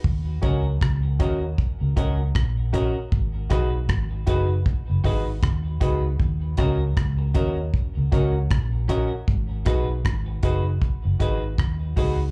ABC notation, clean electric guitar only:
X:1
M:4/4
L:1/16
Q:"Swing 16ths" 1/4=78
K:Ebm
V:1 name="Clean electric guitar"
z2 [DGB] z3 [DGB] z3 [DGB] z3 [DGB] z | z2 [EGc] z3 [EGc] z3 [EGc] z3 [EGc] z | z2 [DGB] z3 [DGB] z3 [DGB] z3 [DGB] z | z2 [EGc] z3 [EGc] z3 [EGc] z3 [EGc] z |]